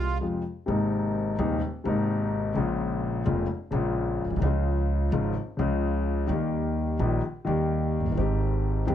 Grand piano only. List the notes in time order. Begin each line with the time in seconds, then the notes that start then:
Already playing: C2 C3 F3 G#3 F4
0.21 F2 C3 F3 G#3 F4
0.66 G#1 G#2 C3 G#3 A#3 D#4
1.39 D#1 D#2 C3 G#3 A#3 D#4
1.84 G#1 G#2 C3 G#3 A#3 D#4
2.55 A#1 A#2 C#3 G#3 A#3 F4
3.25 F1 F2 C#3 G#3 A#3 F4
3.71 A#1 A#2 C#3 G#3 A#3 F4
4.25 A#1
4.31 B1
4.37 C2
4.42 C#2 C#3 F3 G#3 F4
5.12 G#1 G#2 C#3 F3 G#3 F4
5.59 C#2 C#3 F3 G#3 F4
6.27 D#2 D#3 G3 A#3 G4
7.00 A#1 A#2 D#3 G3 A#3 G4
7.45 D#2 D#3 G3 A#3 G4
8.00 F1
8.06 F#1
8.12 G1 D#3
8.17 G#1 G#2 G#3 C4 G4
8.87 D#1 D#2 D#3 G#3 C4 G4